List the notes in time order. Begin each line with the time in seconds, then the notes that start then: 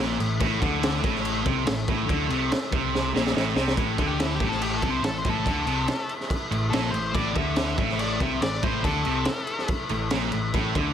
Already playing: A3 E4 B4
0.00 A#1 A#2
0.20 A1 A2, crash
0.40 A1 A2 A4, kick, crash
0.61 D2 D3, kick, crash
0.83 snare, crash
1.02 A1 A2, kick, crash
1.16 snare
1.25 crash
1.44 C2 C3, kick, crash
1.66 A1 A2, snare, crash
1.88 A1 A2, kick, crash
2.06 D2 D3, kick, crash
2.10 D3
2.29 C2 C3, crash
2.52 snare, crash
2.71 C2 C3, kick, crash
2.95 snare
3.14 A#1 A#2, snare
3.27 snare
3.33 A1 A2, snare
3.56 C2 C3, snare
3.68 snare
3.76 A1 A2 A3 E4 B4, kick, crash
3.98 D2 D3, kick, crash
4.07 G4
4.20 E4, snare, crash
4.35 G4
4.40 A1 A2, kick, crash
4.49 A4, snare
4.62 G4, crash
4.78 A4
4.82 C2 C3, kick, crash
4.90 C5
5.03 A1 A2 A4, snare, crash
5.18 C5
5.25 A1 A2, kick, crash
5.29 A4
5.46 D2 D3, kick, crash
5.67 C2 C3, crash
5.88 snare, crash
6.09 crash
6.21 snare
6.30 kick, crash
6.51 A1 A2, crash
6.70 A#1 A#2 A4, snare, crash
6.91 A1 A2 C5, crash
7.13 A1 A2 D5, kick, crash
7.34 D2 D3 E5, kick, crash
7.56 snare, crash
7.78 A1 A2, kick, crash
7.90 snare
7.99 D5, crash
8.20 C2 C3 E5, kick, crash
8.41 A1 A2 D5, snare, crash
8.62 A1 A2 C5, kick, crash
8.83 D2 D3 A4, kick, crash
9.05 C2 C3, crash
9.25 snare, crash
9.47 crash
9.59 snare
9.68 kick, crash
9.89 A1 A2, crash
10.10 A#1 A#2, snare, crash
10.32 A1 A2, crash
10.54 A1 A2, kick, crash
10.75 D2 D3, kick, crash